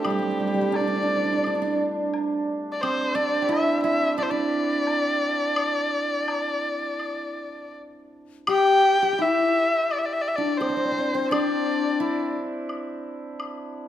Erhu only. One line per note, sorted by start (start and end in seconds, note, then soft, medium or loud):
0.02 0.77 G4 medium
0.76 1.79 D5 medium
2.72 2.83 D5 medium
2.81 3.17 C5 medium
3.15 3.51 D5 medium
3.49 3.82 E5 medium
3.83 4.15 E5 medium
4.19 4.24 D5 medium
4.23 4.32 C5 medium
4.30 7.75 D5 medium
8.50 9.23 G5 loud
9.21 9.94 E5 medium
9.92 10.00 D5 medium
9.98 10.07 E5 medium
10.05 10.14 D5 medium
10.13 10.23 E5 medium
10.21 10.30 D5 medium
10.28 10.37 E5 medium
10.36 10.52 D5 medium
10.52 10.59 D5 medium
10.58 11.30 C5 medium
11.32 12.33 D5 medium